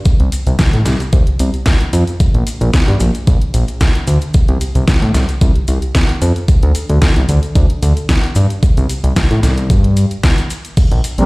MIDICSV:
0, 0, Header, 1, 4, 480
1, 0, Start_track
1, 0, Tempo, 535714
1, 53, Time_signature, 4, 2, 24, 8
1, 10085, End_track
2, 0, Start_track
2, 0, Title_t, "Analog synth pad"
2, 0, Program_c, 0, 89
2, 10013, Note_on_c, 0, 55, 76
2, 10015, Note_on_c, 0, 60, 70
2, 10020, Note_on_c, 0, 62, 75
2, 10020, Note_on_c, 0, 70, 90
2, 10085, Note_off_c, 0, 55, 0
2, 10085, Note_off_c, 0, 60, 0
2, 10085, Note_off_c, 0, 62, 0
2, 10085, Note_off_c, 0, 70, 0
2, 10085, End_track
3, 0, Start_track
3, 0, Title_t, "Analog synth bass"
3, 0, Program_c, 1, 38
3, 49, Note_on_c, 1, 36, 41
3, 153, Note_off_c, 1, 36, 0
3, 178, Note_on_c, 1, 36, 99
3, 264, Note_off_c, 1, 36, 0
3, 417, Note_on_c, 1, 36, 100
3, 504, Note_off_c, 1, 36, 0
3, 658, Note_on_c, 1, 45, 83
3, 744, Note_off_c, 1, 45, 0
3, 767, Note_on_c, 1, 36, 83
3, 867, Note_off_c, 1, 36, 0
3, 1010, Note_on_c, 1, 36, 91
3, 1108, Note_off_c, 1, 36, 0
3, 1139, Note_on_c, 1, 36, 41
3, 1229, Note_off_c, 1, 36, 0
3, 1252, Note_on_c, 1, 36, 85
3, 1349, Note_off_c, 1, 36, 0
3, 1730, Note_on_c, 1, 41, 92
3, 1828, Note_off_c, 1, 41, 0
3, 1973, Note_on_c, 1, 34, 43
3, 2075, Note_off_c, 1, 34, 0
3, 2098, Note_on_c, 1, 34, 96
3, 2184, Note_off_c, 1, 34, 0
3, 2338, Note_on_c, 1, 34, 99
3, 2424, Note_off_c, 1, 34, 0
3, 2580, Note_on_c, 1, 43, 90
3, 2665, Note_off_c, 1, 43, 0
3, 2688, Note_on_c, 1, 34, 87
3, 2787, Note_off_c, 1, 34, 0
3, 2933, Note_on_c, 1, 34, 92
3, 3030, Note_off_c, 1, 34, 0
3, 3171, Note_on_c, 1, 34, 83
3, 3269, Note_off_c, 1, 34, 0
3, 3651, Note_on_c, 1, 38, 93
3, 3749, Note_off_c, 1, 38, 0
3, 3892, Note_on_c, 1, 36, 44
3, 3995, Note_off_c, 1, 36, 0
3, 4017, Note_on_c, 1, 36, 102
3, 4104, Note_off_c, 1, 36, 0
3, 4257, Note_on_c, 1, 36, 93
3, 4343, Note_off_c, 1, 36, 0
3, 4498, Note_on_c, 1, 45, 88
3, 4584, Note_off_c, 1, 45, 0
3, 4609, Note_on_c, 1, 36, 82
3, 4708, Note_off_c, 1, 36, 0
3, 4851, Note_on_c, 1, 36, 91
3, 4948, Note_off_c, 1, 36, 0
3, 4979, Note_on_c, 1, 36, 42
3, 5069, Note_off_c, 1, 36, 0
3, 5090, Note_on_c, 1, 36, 89
3, 5188, Note_off_c, 1, 36, 0
3, 5570, Note_on_c, 1, 41, 94
3, 5668, Note_off_c, 1, 41, 0
3, 5810, Note_on_c, 1, 38, 43
3, 5913, Note_off_c, 1, 38, 0
3, 5939, Note_on_c, 1, 38, 103
3, 6024, Note_off_c, 1, 38, 0
3, 6178, Note_on_c, 1, 38, 96
3, 6264, Note_off_c, 1, 38, 0
3, 6416, Note_on_c, 1, 36, 84
3, 6503, Note_off_c, 1, 36, 0
3, 6530, Note_on_c, 1, 38, 85
3, 6628, Note_off_c, 1, 38, 0
3, 6768, Note_on_c, 1, 38, 95
3, 6867, Note_off_c, 1, 38, 0
3, 7010, Note_on_c, 1, 38, 82
3, 7108, Note_off_c, 1, 38, 0
3, 7488, Note_on_c, 1, 43, 96
3, 7587, Note_off_c, 1, 43, 0
3, 7730, Note_on_c, 1, 36, 43
3, 7834, Note_off_c, 1, 36, 0
3, 7859, Note_on_c, 1, 36, 105
3, 7945, Note_off_c, 1, 36, 0
3, 8097, Note_on_c, 1, 36, 94
3, 8183, Note_off_c, 1, 36, 0
3, 8338, Note_on_c, 1, 45, 91
3, 8424, Note_off_c, 1, 45, 0
3, 8451, Note_on_c, 1, 36, 84
3, 8691, Note_on_c, 1, 43, 93
3, 8705, Note_off_c, 1, 36, 0
3, 9010, Note_off_c, 1, 43, 0
3, 9653, Note_on_c, 1, 34, 44
3, 9755, Note_off_c, 1, 34, 0
3, 9781, Note_on_c, 1, 34, 103
3, 9865, Note_off_c, 1, 34, 0
3, 10020, Note_on_c, 1, 34, 100
3, 10085, Note_off_c, 1, 34, 0
3, 10085, End_track
4, 0, Start_track
4, 0, Title_t, "Drums"
4, 45, Note_on_c, 9, 82, 51
4, 49, Note_on_c, 9, 42, 60
4, 50, Note_on_c, 9, 36, 119
4, 134, Note_off_c, 9, 82, 0
4, 138, Note_off_c, 9, 42, 0
4, 139, Note_off_c, 9, 36, 0
4, 177, Note_on_c, 9, 42, 37
4, 267, Note_off_c, 9, 42, 0
4, 289, Note_on_c, 9, 46, 107
4, 295, Note_on_c, 9, 82, 100
4, 378, Note_off_c, 9, 46, 0
4, 385, Note_off_c, 9, 82, 0
4, 418, Note_on_c, 9, 42, 36
4, 421, Note_on_c, 9, 82, 36
4, 507, Note_off_c, 9, 42, 0
4, 511, Note_off_c, 9, 82, 0
4, 527, Note_on_c, 9, 38, 103
4, 528, Note_on_c, 9, 42, 56
4, 531, Note_on_c, 9, 36, 97
4, 531, Note_on_c, 9, 82, 56
4, 616, Note_off_c, 9, 38, 0
4, 618, Note_off_c, 9, 42, 0
4, 620, Note_off_c, 9, 36, 0
4, 620, Note_off_c, 9, 82, 0
4, 657, Note_on_c, 9, 42, 36
4, 747, Note_off_c, 9, 42, 0
4, 766, Note_on_c, 9, 38, 56
4, 768, Note_on_c, 9, 46, 91
4, 768, Note_on_c, 9, 82, 86
4, 856, Note_off_c, 9, 38, 0
4, 857, Note_off_c, 9, 46, 0
4, 858, Note_off_c, 9, 82, 0
4, 898, Note_on_c, 9, 42, 36
4, 906, Note_on_c, 9, 82, 44
4, 987, Note_off_c, 9, 42, 0
4, 996, Note_off_c, 9, 82, 0
4, 1009, Note_on_c, 9, 42, 58
4, 1011, Note_on_c, 9, 36, 123
4, 1013, Note_on_c, 9, 82, 50
4, 1099, Note_off_c, 9, 42, 0
4, 1101, Note_off_c, 9, 36, 0
4, 1103, Note_off_c, 9, 82, 0
4, 1137, Note_on_c, 9, 42, 36
4, 1227, Note_off_c, 9, 42, 0
4, 1249, Note_on_c, 9, 46, 100
4, 1252, Note_on_c, 9, 82, 87
4, 1339, Note_off_c, 9, 46, 0
4, 1342, Note_off_c, 9, 82, 0
4, 1378, Note_on_c, 9, 42, 37
4, 1383, Note_on_c, 9, 82, 34
4, 1468, Note_off_c, 9, 42, 0
4, 1472, Note_off_c, 9, 82, 0
4, 1485, Note_on_c, 9, 38, 108
4, 1487, Note_on_c, 9, 42, 59
4, 1492, Note_on_c, 9, 36, 99
4, 1498, Note_on_c, 9, 82, 52
4, 1575, Note_off_c, 9, 38, 0
4, 1576, Note_off_c, 9, 42, 0
4, 1581, Note_off_c, 9, 36, 0
4, 1587, Note_off_c, 9, 82, 0
4, 1617, Note_on_c, 9, 42, 35
4, 1707, Note_off_c, 9, 42, 0
4, 1730, Note_on_c, 9, 46, 89
4, 1735, Note_on_c, 9, 82, 90
4, 1819, Note_off_c, 9, 46, 0
4, 1824, Note_off_c, 9, 82, 0
4, 1859, Note_on_c, 9, 42, 36
4, 1863, Note_on_c, 9, 82, 45
4, 1949, Note_off_c, 9, 42, 0
4, 1953, Note_off_c, 9, 82, 0
4, 1972, Note_on_c, 9, 36, 116
4, 1972, Note_on_c, 9, 82, 48
4, 1974, Note_on_c, 9, 42, 60
4, 2061, Note_off_c, 9, 82, 0
4, 2062, Note_off_c, 9, 36, 0
4, 2063, Note_off_c, 9, 42, 0
4, 2101, Note_on_c, 9, 42, 36
4, 2191, Note_off_c, 9, 42, 0
4, 2211, Note_on_c, 9, 46, 101
4, 2215, Note_on_c, 9, 82, 87
4, 2300, Note_off_c, 9, 46, 0
4, 2304, Note_off_c, 9, 82, 0
4, 2336, Note_on_c, 9, 82, 37
4, 2342, Note_on_c, 9, 42, 38
4, 2426, Note_off_c, 9, 82, 0
4, 2431, Note_off_c, 9, 42, 0
4, 2448, Note_on_c, 9, 82, 48
4, 2451, Note_on_c, 9, 38, 103
4, 2453, Note_on_c, 9, 36, 96
4, 2453, Note_on_c, 9, 42, 58
4, 2538, Note_off_c, 9, 82, 0
4, 2541, Note_off_c, 9, 38, 0
4, 2542, Note_off_c, 9, 36, 0
4, 2542, Note_off_c, 9, 42, 0
4, 2582, Note_on_c, 9, 42, 35
4, 2672, Note_off_c, 9, 42, 0
4, 2687, Note_on_c, 9, 82, 83
4, 2692, Note_on_c, 9, 46, 85
4, 2777, Note_off_c, 9, 82, 0
4, 2782, Note_off_c, 9, 46, 0
4, 2820, Note_on_c, 9, 42, 38
4, 2823, Note_on_c, 9, 82, 40
4, 2910, Note_off_c, 9, 42, 0
4, 2912, Note_off_c, 9, 82, 0
4, 2932, Note_on_c, 9, 42, 60
4, 2933, Note_on_c, 9, 36, 119
4, 2934, Note_on_c, 9, 82, 46
4, 3021, Note_off_c, 9, 42, 0
4, 3023, Note_off_c, 9, 36, 0
4, 3023, Note_off_c, 9, 82, 0
4, 3060, Note_on_c, 9, 42, 37
4, 3150, Note_off_c, 9, 42, 0
4, 3171, Note_on_c, 9, 46, 96
4, 3175, Note_on_c, 9, 82, 78
4, 3261, Note_off_c, 9, 46, 0
4, 3264, Note_off_c, 9, 82, 0
4, 3297, Note_on_c, 9, 82, 39
4, 3301, Note_on_c, 9, 42, 36
4, 3386, Note_off_c, 9, 82, 0
4, 3390, Note_off_c, 9, 42, 0
4, 3409, Note_on_c, 9, 82, 52
4, 3412, Note_on_c, 9, 38, 103
4, 3413, Note_on_c, 9, 36, 101
4, 3414, Note_on_c, 9, 42, 57
4, 3498, Note_off_c, 9, 82, 0
4, 3502, Note_off_c, 9, 38, 0
4, 3503, Note_off_c, 9, 36, 0
4, 3504, Note_off_c, 9, 42, 0
4, 3541, Note_on_c, 9, 42, 38
4, 3631, Note_off_c, 9, 42, 0
4, 3650, Note_on_c, 9, 82, 93
4, 3651, Note_on_c, 9, 46, 84
4, 3739, Note_off_c, 9, 82, 0
4, 3741, Note_off_c, 9, 46, 0
4, 3774, Note_on_c, 9, 82, 42
4, 3779, Note_on_c, 9, 42, 37
4, 3864, Note_off_c, 9, 82, 0
4, 3869, Note_off_c, 9, 42, 0
4, 3885, Note_on_c, 9, 82, 48
4, 3889, Note_on_c, 9, 42, 62
4, 3892, Note_on_c, 9, 36, 112
4, 3974, Note_off_c, 9, 82, 0
4, 3979, Note_off_c, 9, 42, 0
4, 3982, Note_off_c, 9, 36, 0
4, 4018, Note_on_c, 9, 42, 36
4, 4107, Note_off_c, 9, 42, 0
4, 4130, Note_on_c, 9, 82, 80
4, 4131, Note_on_c, 9, 46, 94
4, 4220, Note_off_c, 9, 82, 0
4, 4221, Note_off_c, 9, 46, 0
4, 4259, Note_on_c, 9, 42, 37
4, 4261, Note_on_c, 9, 82, 36
4, 4348, Note_off_c, 9, 42, 0
4, 4351, Note_off_c, 9, 82, 0
4, 4369, Note_on_c, 9, 38, 100
4, 4370, Note_on_c, 9, 42, 61
4, 4372, Note_on_c, 9, 36, 91
4, 4375, Note_on_c, 9, 82, 49
4, 4458, Note_off_c, 9, 38, 0
4, 4460, Note_off_c, 9, 42, 0
4, 4461, Note_off_c, 9, 36, 0
4, 4465, Note_off_c, 9, 82, 0
4, 4500, Note_on_c, 9, 42, 36
4, 4590, Note_off_c, 9, 42, 0
4, 4609, Note_on_c, 9, 38, 53
4, 4610, Note_on_c, 9, 46, 81
4, 4610, Note_on_c, 9, 82, 80
4, 4699, Note_off_c, 9, 38, 0
4, 4700, Note_off_c, 9, 46, 0
4, 4700, Note_off_c, 9, 82, 0
4, 4738, Note_on_c, 9, 42, 38
4, 4744, Note_on_c, 9, 82, 37
4, 4827, Note_off_c, 9, 42, 0
4, 4834, Note_off_c, 9, 82, 0
4, 4850, Note_on_c, 9, 42, 63
4, 4851, Note_on_c, 9, 36, 113
4, 4851, Note_on_c, 9, 82, 49
4, 4939, Note_off_c, 9, 42, 0
4, 4940, Note_off_c, 9, 36, 0
4, 4940, Note_off_c, 9, 82, 0
4, 4978, Note_on_c, 9, 42, 38
4, 5067, Note_off_c, 9, 42, 0
4, 5086, Note_on_c, 9, 82, 83
4, 5088, Note_on_c, 9, 46, 97
4, 5176, Note_off_c, 9, 82, 0
4, 5178, Note_off_c, 9, 46, 0
4, 5214, Note_on_c, 9, 82, 36
4, 5217, Note_on_c, 9, 42, 36
4, 5304, Note_off_c, 9, 82, 0
4, 5306, Note_off_c, 9, 42, 0
4, 5329, Note_on_c, 9, 38, 107
4, 5330, Note_on_c, 9, 36, 95
4, 5330, Note_on_c, 9, 42, 61
4, 5333, Note_on_c, 9, 82, 50
4, 5418, Note_off_c, 9, 38, 0
4, 5420, Note_off_c, 9, 36, 0
4, 5420, Note_off_c, 9, 42, 0
4, 5423, Note_off_c, 9, 82, 0
4, 5457, Note_on_c, 9, 42, 37
4, 5547, Note_off_c, 9, 42, 0
4, 5570, Note_on_c, 9, 46, 83
4, 5572, Note_on_c, 9, 82, 89
4, 5660, Note_off_c, 9, 46, 0
4, 5661, Note_off_c, 9, 82, 0
4, 5699, Note_on_c, 9, 42, 36
4, 5703, Note_on_c, 9, 82, 35
4, 5789, Note_off_c, 9, 42, 0
4, 5793, Note_off_c, 9, 82, 0
4, 5809, Note_on_c, 9, 36, 111
4, 5809, Note_on_c, 9, 42, 63
4, 5814, Note_on_c, 9, 82, 48
4, 5898, Note_off_c, 9, 42, 0
4, 5899, Note_off_c, 9, 36, 0
4, 5903, Note_off_c, 9, 82, 0
4, 5938, Note_on_c, 9, 42, 39
4, 6027, Note_off_c, 9, 42, 0
4, 6047, Note_on_c, 9, 46, 94
4, 6050, Note_on_c, 9, 82, 90
4, 6136, Note_off_c, 9, 46, 0
4, 6139, Note_off_c, 9, 82, 0
4, 6178, Note_on_c, 9, 42, 40
4, 6180, Note_on_c, 9, 82, 36
4, 6267, Note_off_c, 9, 42, 0
4, 6269, Note_off_c, 9, 82, 0
4, 6287, Note_on_c, 9, 38, 113
4, 6289, Note_on_c, 9, 36, 90
4, 6289, Note_on_c, 9, 42, 59
4, 6292, Note_on_c, 9, 82, 49
4, 6377, Note_off_c, 9, 38, 0
4, 6378, Note_off_c, 9, 42, 0
4, 6379, Note_off_c, 9, 36, 0
4, 6382, Note_off_c, 9, 82, 0
4, 6417, Note_on_c, 9, 42, 38
4, 6507, Note_off_c, 9, 42, 0
4, 6529, Note_on_c, 9, 46, 79
4, 6531, Note_on_c, 9, 82, 74
4, 6619, Note_off_c, 9, 46, 0
4, 6621, Note_off_c, 9, 82, 0
4, 6655, Note_on_c, 9, 42, 39
4, 6666, Note_on_c, 9, 82, 36
4, 6745, Note_off_c, 9, 42, 0
4, 6756, Note_off_c, 9, 82, 0
4, 6769, Note_on_c, 9, 36, 112
4, 6769, Note_on_c, 9, 82, 50
4, 6770, Note_on_c, 9, 42, 66
4, 6858, Note_off_c, 9, 82, 0
4, 6859, Note_off_c, 9, 36, 0
4, 6860, Note_off_c, 9, 42, 0
4, 6898, Note_on_c, 9, 42, 40
4, 6988, Note_off_c, 9, 42, 0
4, 7012, Note_on_c, 9, 46, 97
4, 7012, Note_on_c, 9, 82, 75
4, 7101, Note_off_c, 9, 46, 0
4, 7102, Note_off_c, 9, 82, 0
4, 7140, Note_on_c, 9, 42, 37
4, 7143, Note_on_c, 9, 82, 36
4, 7229, Note_off_c, 9, 42, 0
4, 7233, Note_off_c, 9, 82, 0
4, 7249, Note_on_c, 9, 36, 93
4, 7249, Note_on_c, 9, 38, 108
4, 7249, Note_on_c, 9, 82, 45
4, 7250, Note_on_c, 9, 42, 63
4, 7338, Note_off_c, 9, 38, 0
4, 7338, Note_off_c, 9, 82, 0
4, 7339, Note_off_c, 9, 36, 0
4, 7340, Note_off_c, 9, 42, 0
4, 7379, Note_on_c, 9, 42, 41
4, 7468, Note_off_c, 9, 42, 0
4, 7483, Note_on_c, 9, 82, 85
4, 7491, Note_on_c, 9, 46, 86
4, 7573, Note_off_c, 9, 82, 0
4, 7581, Note_off_c, 9, 46, 0
4, 7619, Note_on_c, 9, 42, 39
4, 7627, Note_on_c, 9, 82, 35
4, 7709, Note_off_c, 9, 42, 0
4, 7717, Note_off_c, 9, 82, 0
4, 7730, Note_on_c, 9, 36, 111
4, 7730, Note_on_c, 9, 42, 66
4, 7737, Note_on_c, 9, 82, 54
4, 7820, Note_off_c, 9, 36, 0
4, 7820, Note_off_c, 9, 42, 0
4, 7827, Note_off_c, 9, 82, 0
4, 7861, Note_on_c, 9, 42, 41
4, 7864, Note_on_c, 9, 82, 33
4, 7950, Note_off_c, 9, 42, 0
4, 7954, Note_off_c, 9, 82, 0
4, 7970, Note_on_c, 9, 46, 97
4, 7974, Note_on_c, 9, 82, 81
4, 8059, Note_off_c, 9, 46, 0
4, 8064, Note_off_c, 9, 82, 0
4, 8097, Note_on_c, 9, 82, 37
4, 8099, Note_on_c, 9, 42, 42
4, 8186, Note_off_c, 9, 82, 0
4, 8189, Note_off_c, 9, 42, 0
4, 8208, Note_on_c, 9, 82, 51
4, 8211, Note_on_c, 9, 36, 92
4, 8211, Note_on_c, 9, 38, 109
4, 8213, Note_on_c, 9, 42, 67
4, 8298, Note_off_c, 9, 82, 0
4, 8301, Note_off_c, 9, 36, 0
4, 8301, Note_off_c, 9, 38, 0
4, 8302, Note_off_c, 9, 42, 0
4, 8340, Note_on_c, 9, 42, 39
4, 8430, Note_off_c, 9, 42, 0
4, 8450, Note_on_c, 9, 38, 56
4, 8452, Note_on_c, 9, 46, 83
4, 8454, Note_on_c, 9, 82, 81
4, 8540, Note_off_c, 9, 38, 0
4, 8541, Note_off_c, 9, 46, 0
4, 8543, Note_off_c, 9, 82, 0
4, 8578, Note_on_c, 9, 82, 33
4, 8580, Note_on_c, 9, 42, 41
4, 8667, Note_off_c, 9, 82, 0
4, 8669, Note_off_c, 9, 42, 0
4, 8690, Note_on_c, 9, 42, 65
4, 8691, Note_on_c, 9, 36, 116
4, 8697, Note_on_c, 9, 82, 50
4, 8780, Note_off_c, 9, 42, 0
4, 8781, Note_off_c, 9, 36, 0
4, 8787, Note_off_c, 9, 82, 0
4, 8819, Note_on_c, 9, 42, 39
4, 8909, Note_off_c, 9, 42, 0
4, 8930, Note_on_c, 9, 82, 76
4, 8931, Note_on_c, 9, 46, 97
4, 9020, Note_off_c, 9, 82, 0
4, 9021, Note_off_c, 9, 46, 0
4, 9059, Note_on_c, 9, 42, 39
4, 9064, Note_on_c, 9, 82, 34
4, 9149, Note_off_c, 9, 42, 0
4, 9153, Note_off_c, 9, 82, 0
4, 9170, Note_on_c, 9, 38, 114
4, 9172, Note_on_c, 9, 36, 98
4, 9172, Note_on_c, 9, 42, 62
4, 9179, Note_on_c, 9, 82, 45
4, 9260, Note_off_c, 9, 38, 0
4, 9261, Note_off_c, 9, 42, 0
4, 9262, Note_off_c, 9, 36, 0
4, 9268, Note_off_c, 9, 82, 0
4, 9301, Note_on_c, 9, 42, 42
4, 9302, Note_on_c, 9, 82, 35
4, 9390, Note_off_c, 9, 42, 0
4, 9391, Note_off_c, 9, 82, 0
4, 9410, Note_on_c, 9, 82, 87
4, 9412, Note_on_c, 9, 46, 81
4, 9499, Note_off_c, 9, 82, 0
4, 9501, Note_off_c, 9, 46, 0
4, 9540, Note_on_c, 9, 42, 40
4, 9547, Note_on_c, 9, 82, 39
4, 9630, Note_off_c, 9, 42, 0
4, 9636, Note_off_c, 9, 82, 0
4, 9650, Note_on_c, 9, 82, 48
4, 9651, Note_on_c, 9, 42, 66
4, 9651, Note_on_c, 9, 49, 74
4, 9652, Note_on_c, 9, 36, 116
4, 9739, Note_off_c, 9, 82, 0
4, 9741, Note_off_c, 9, 36, 0
4, 9741, Note_off_c, 9, 42, 0
4, 9741, Note_off_c, 9, 49, 0
4, 9780, Note_on_c, 9, 42, 39
4, 9869, Note_off_c, 9, 42, 0
4, 9893, Note_on_c, 9, 46, 102
4, 9896, Note_on_c, 9, 82, 97
4, 9982, Note_off_c, 9, 46, 0
4, 9985, Note_off_c, 9, 82, 0
4, 10019, Note_on_c, 9, 42, 39
4, 10020, Note_on_c, 9, 82, 42
4, 10085, Note_off_c, 9, 42, 0
4, 10085, Note_off_c, 9, 82, 0
4, 10085, End_track
0, 0, End_of_file